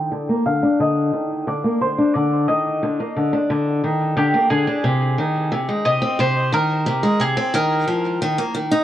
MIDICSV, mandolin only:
0, 0, Header, 1, 2, 480
1, 0, Start_track
1, 0, Key_signature, -3, "major"
1, 0, Tempo, 674157
1, 1532, Time_signature, 4, 2, 24, 8
1, 6293, End_track
2, 0, Start_track
2, 0, Title_t, "Mandolin"
2, 0, Program_c, 0, 25
2, 0, Note_on_c, 0, 79, 105
2, 323, Note_off_c, 0, 79, 0
2, 326, Note_on_c, 0, 77, 83
2, 552, Note_off_c, 0, 77, 0
2, 574, Note_on_c, 0, 75, 93
2, 1049, Note_off_c, 0, 75, 0
2, 1051, Note_on_c, 0, 74, 92
2, 1275, Note_off_c, 0, 74, 0
2, 1291, Note_on_c, 0, 72, 75
2, 1519, Note_off_c, 0, 72, 0
2, 1522, Note_on_c, 0, 74, 93
2, 1763, Note_off_c, 0, 74, 0
2, 1766, Note_on_c, 0, 75, 83
2, 2460, Note_off_c, 0, 75, 0
2, 2971, Note_on_c, 0, 67, 84
2, 3202, Note_off_c, 0, 67, 0
2, 3205, Note_on_c, 0, 68, 79
2, 4167, Note_on_c, 0, 75, 88
2, 4197, Note_off_c, 0, 68, 0
2, 4412, Note_off_c, 0, 75, 0
2, 4414, Note_on_c, 0, 72, 95
2, 4651, Note_off_c, 0, 72, 0
2, 4654, Note_on_c, 0, 70, 87
2, 5133, Note_on_c, 0, 68, 77
2, 5147, Note_off_c, 0, 70, 0
2, 5373, Note_on_c, 0, 70, 89
2, 5379, Note_off_c, 0, 68, 0
2, 6293, Note_off_c, 0, 70, 0
2, 6293, End_track
0, 0, End_of_file